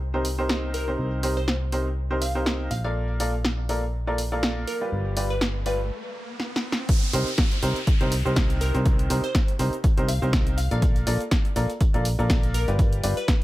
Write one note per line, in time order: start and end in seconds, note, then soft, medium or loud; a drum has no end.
0.00 0.96 C2 medium
0.14 0.24 C3 medium
0.14 0.24 D#4 medium
0.14 0.24 G4 medium
0.14 0.24 A#4 medium
0.14 0.24 C5 loud
0.25 open hi-hat loud
0.38 0.84 C3 medium
0.38 0.84 D#4 medium
0.38 0.84 G4 medium
0.38 0.84 A#4 medium
0.38 0.84 C5 loud
0.49 snare loud
0.74 0.89 A#4 medium
0.74 open hi-hat medium
0.88 1.21 C3 medium
0.88 1.21 D#4 medium
0.88 1.21 G4 medium
0.88 1.21 A#4 medium
0.88 1.21 C5 medium
0.99 2.69 C2 medium
1.23 1.36 C3 medium
1.23 1.36 D#4 medium
1.23 1.36 G4 medium
1.23 1.36 A#4 medium
1.23 1.36 C5 loud
1.23 open hi-hat loud
1.37 1.49 C5 medium
1.48 snare loud
1.72 1.85 C3 medium
1.72 1.85 D#4 medium
1.72 1.85 G4 medium
1.72 1.85 A#4 medium
1.72 1.85 C5 medium
1.72 open hi-hat medium
2.11 2.21 C3 medium
2.11 2.21 D#4 medium
2.11 2.21 G4 medium
2.11 2.21 A#4 medium
2.11 2.21 C5 loud
2.22 2.36 F5 medium
2.22 open hi-hat loud
2.35 2.69 C3 medium
2.35 2.69 D#4 medium
2.35 2.69 G4 medium
2.35 2.69 A#4 medium
2.35 2.69 C5 loud
2.46 snare loud
2.71 4.65 A#1 medium
2.71 2.80 F5 medium
2.71 open hi-hat medium
2.84 3.17 A#3 medium
2.84 3.17 F4 medium
2.84 3.17 A4 medium
2.84 3.17 A#4 medium
2.84 3.17 D5 medium
2.84 2.91 F5 medium
2.95 riser medium
3.20 3.33 A#3 medium
3.20 3.33 F4 medium
3.20 3.33 A4 medium
3.20 3.33 A#4 medium
3.20 3.33 D5 loud
3.20 open hi-hat loud
3.45 snare loud
3.69 3.82 A#3 medium
3.69 3.82 F4 medium
3.69 3.82 A4 medium
3.69 3.82 A#4 medium
3.69 3.82 D5 loud
3.69 open hi-hat medium
4.07 4.18 A#3 medium
4.07 4.18 F4 medium
4.07 4.18 A4 medium
4.07 4.18 A#4 medium
4.07 4.18 D5 loud
4.18 open hi-hat loud
4.32 4.78 A#3 medium
4.32 4.78 F4 medium
4.32 4.78 A4 medium
4.32 4.78 A#4 medium
4.32 4.78 D5 loud
4.43 snare loud
4.67 4.82 A#4 medium
4.67 open hi-hat medium
4.81 5.14 G3 medium
4.81 5.14 F4 medium
4.81 5.14 G4 medium
4.81 5.14 B4 medium
4.81 5.14 D5 medium
4.92 5.90 G1 medium
5.17 5.30 G3 medium
5.17 5.30 F4 medium
5.17 5.30 G4 medium
5.17 5.30 B4 medium
5.17 5.30 D5 loud
5.17 open hi-hat loud
5.30 5.42 B4 medium
5.41 snare loud
5.66 5.79 G3 medium
5.66 5.79 F4 medium
5.66 5.79 G4 medium
5.66 5.79 B4 medium
5.66 6.15 B4 medium
5.66 5.79 D5 medium
5.66 open hi-hat medium
6.40 snare medium
6.56 snare medium
6.72 snare medium
6.89 kick loud
6.89 closed hi-hat medium
6.89 crash loud
6.89 downlifter medium
6.89 shaker soft
7.02 closed hi-hat medium
7.02 closed hi-hat soft
7.02 shaker soft
7.13 7.24 C2 loud
7.13 7.26 C3 loud
7.13 7.26 D#4 medium
7.13 7.26 G4 medium
7.13 7.26 A#4 medium
7.13 7.26 C5 loud
7.13 closed hi-hat medium
7.13 open hi-hat loud
7.13 shaker medium
7.27 closed hi-hat soft
7.27 shaker soft
7.38 kick loud
7.38 snare loud
7.38 closed hi-hat medium
7.38 shaker soft
7.52 closed hi-hat medium
7.52 shaker soft
7.63 7.73 C2 loud
7.63 7.75 C3 medium
7.63 7.75 D#4 medium
7.63 7.75 G4 medium
7.63 7.75 A#4 medium
7.63 7.75 C5 loud
7.63 closed hi-hat medium
7.63 open hi-hat medium
7.63 shaker medium
7.76 closed hi-hat soft
7.76 shaker soft
7.87 kick loud
7.87 closed hi-hat medium
7.87 shaker soft
8.01 8.23 C2 loud
8.01 8.11 C3 loud
8.01 8.11 D#4 medium
8.01 8.11 G4 medium
8.01 8.11 A#4 medium
8.01 8.11 C5 loud
8.01 closed hi-hat medium
8.01 shaker soft
8.12 closed hi-hat medium
8.12 open hi-hat loud
8.12 shaker medium
8.25 8.72 C2 loud
8.25 8.71 C3 loud
8.25 8.71 D#4 medium
8.25 8.71 G4 medium
8.25 8.71 A#4 medium
8.25 8.71 C5 loud
8.25 shaker soft
8.36 kick loud
8.36 snare loud
8.36 closed hi-hat medium
8.36 open hi-hat medium
8.36 shaker soft
8.50 closed hi-hat medium
8.50 shaker soft
8.61 8.75 A#4 medium
8.61 closed hi-hat medium
8.61 open hi-hat medium
8.61 shaker medium
8.75 9.08 C2 loud
8.75 9.08 C3 medium
8.75 9.08 D#4 medium
8.75 9.08 G4 medium
8.75 9.08 A#4 medium
8.75 9.07 C5 loud
8.75 closed hi-hat soft
8.75 shaker soft
8.86 kick loud
8.86 closed hi-hat medium
8.86 shaker soft
8.99 closed hi-hat medium
8.99 shaker soft
9.10 9.20 C2 loud
9.10 9.23 C3 loud
9.10 9.23 D#4 medium
9.10 9.23 G4 medium
9.10 9.23 A#4 medium
9.10 9.23 C5 loud
9.10 closed hi-hat medium
9.10 open hi-hat loud
9.10 shaker medium
9.24 9.36 C5 medium
9.24 closed hi-hat soft
9.24 shaker soft
9.35 kick loud
9.35 snare loud
9.35 closed hi-hat medium
9.35 shaker soft
9.48 closed hi-hat medium
9.48 shaker soft
9.59 9.69 C2 loud
9.59 9.72 C3 medium
9.59 9.72 D#4 medium
9.59 9.72 G4 medium
9.59 9.72 A#4 medium
9.59 9.72 C5 loud
9.59 closed hi-hat medium
9.59 open hi-hat medium
9.59 shaker medium
9.73 closed hi-hat soft
9.73 shaker soft
9.84 kick loud
9.84 closed hi-hat medium
9.84 shaker soft
9.97 10.19 C2 loud
9.97 10.08 C3 loud
9.97 10.08 D#4 medium
9.97 10.08 G4 medium
9.97 10.08 A#4 medium
9.97 10.08 C5 loud
9.97 closed hi-hat medium
9.97 shaker soft
10.08 10.23 F5 loud
10.08 closed hi-hat medium
10.08 open hi-hat loud
10.08 shaker medium
10.22 10.69 C2 medium
10.22 10.56 C3 loud
10.22 10.56 D#4 medium
10.22 10.56 G4 medium
10.22 10.56 A#4 medium
10.22 10.56 C5 loud
10.22 shaker soft
10.33 kick loud
10.33 snare loud
10.33 closed hi-hat medium
10.33 shaker soft
10.47 closed hi-hat medium
10.47 shaker soft
10.58 10.66 F5 medium
10.58 closed hi-hat medium
10.58 open hi-hat medium
10.58 shaker medium
10.71 11.05 A#1 loud
10.71 11.04 A#3 medium
10.71 11.04 F4 medium
10.71 11.04 A4 medium
10.71 11.04 A#4 medium
10.71 11.04 D5 loud
10.71 10.78 F5 medium
10.71 closed hi-hat soft
10.71 shaker soft
10.82 kick loud
10.82 closed hi-hat medium
10.82 shaker soft
10.96 closed hi-hat soft
10.96 closed hi-hat medium
10.96 shaker soft
11.07 11.17 A#1 loud
11.07 11.20 A#3 loud
11.07 11.20 F4 medium
11.07 11.20 A4 medium
11.07 11.20 A#4 medium
11.07 11.20 D5 loud
11.07 closed hi-hat medium
11.07 open hi-hat loud
11.07 shaker medium
11.20 closed hi-hat soft
11.20 shaker soft
11.31 kick loud
11.31 snare loud
11.31 closed hi-hat medium
11.31 shaker soft
11.45 closed hi-hat medium
11.45 shaker soft
11.56 11.66 A#1 loud
11.56 11.69 A#3 medium
11.56 11.69 F4 medium
11.56 11.69 A4 medium
11.56 11.69 A#4 medium
11.56 11.69 D5 loud
11.56 closed hi-hat medium
11.56 open hi-hat loud
11.56 shaker medium
11.70 closed hi-hat soft
11.70 shaker soft
11.81 kick loud
11.81 closed hi-hat medium
11.81 shaker soft
11.94 12.16 A#1 loud
11.94 12.05 A#3 loud
11.94 12.05 F4 medium
11.94 12.05 A4 medium
11.94 12.05 A#4 medium
11.94 12.05 D5 loud
11.94 closed hi-hat medium
11.94 shaker soft
12.05 closed hi-hat medium
12.05 open hi-hat loud
12.05 shaker medium
12.19 12.65 A#1 loud
12.19 12.65 A#3 loud
12.19 12.65 F4 medium
12.19 12.65 A4 medium
12.19 12.65 A#4 medium
12.19 12.65 D5 loud
12.19 shaker soft
12.30 kick loud
12.30 snare loud
12.30 closed hi-hat medium
12.30 open hi-hat medium
12.30 shaker soft
12.43 closed hi-hat medium
12.43 shaker soft
12.54 12.69 A#4 medium
12.54 closed hi-hat medium
12.54 open hi-hat loud
12.54 shaker medium
12.68 13.01 G1 loud
12.68 13.01 G3 medium
12.68 13.01 F4 medium
12.68 13.01 G4 medium
12.68 13.01 B4 medium
12.68 13.01 D5 loud
12.68 closed hi-hat soft
12.68 shaker soft
12.79 kick loud
12.79 closed hi-hat medium
12.79 shaker soft
12.93 closed hi-hat medium
12.93 shaker soft
13.04 13.14 G1 loud
13.04 13.16 G3 loud
13.04 13.16 F4 medium
13.04 13.16 G4 medium
13.04 13.16 B4 medium
13.04 13.16 D5 loud
13.04 closed hi-hat medium
13.04 open hi-hat loud
13.04 shaker medium
13.17 13.29 B4 loud
13.17 closed hi-hat soft
13.17 shaker soft
13.28 kick loud
13.28 snare loud
13.28 closed hi-hat medium
13.28 shaker soft